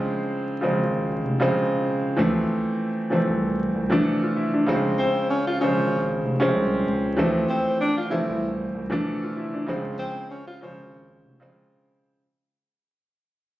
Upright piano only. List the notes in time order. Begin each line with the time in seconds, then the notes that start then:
Already playing: C#3 F3 G#3 C4
0.61 C#3 F3 G#3 C4
1.40 C#3 F3 G#3 C4
2.16 E3 F3 A3 C4
3.10 E3 F3 A3 C4
3.90 E3 F3 A3 D4
4.05 A4
4.22 F4
4.36 E4
4.54 D4
4.67 C#3 F3 G#3 C4
5.61 C#3 F3 G#3 C5
6.40 F3 G#3 C4 C#4
7.17 E3 F3 A3 C4
8.10 E3 F3 A3 C4
8.90 E3 F3 A3 D4
9.05 A4
9.23 F4
9.36 E4
9.54 D4
9.67 C#3 F3 G#3 C4
10.61 C#3 F3 G#3 C5
11.40 C#3 F3 G#3 C4